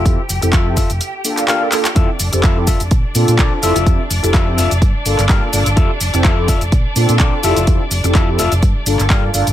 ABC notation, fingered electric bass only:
X:1
M:4/4
L:1/16
Q:"Swing 16ths" 1/4=126
K:F
V:1 name="Fingered electric bass" clef=bass
F,, z F,,, F,,, F,,2 F,,, F,,, z8 | F,, z F,,, F,,, F,,2 F,,, F,,, B,,, z B,, B,, B,,, z F,,, F,,, | F,, z F,,, F,,, F,,2 F,,, F,,, G,, z G,,, G,,, G,, z G,,, G,,, | F,, z F,,, F,,, F,,2 F,,, F,,, B,,, z B,, B,, B,,, z F,,, F,,, |
F,, z F,,, F,,, F,,2 F,,, F,,, G,, z G,,, G,,, G,, z G,,, G,,, |]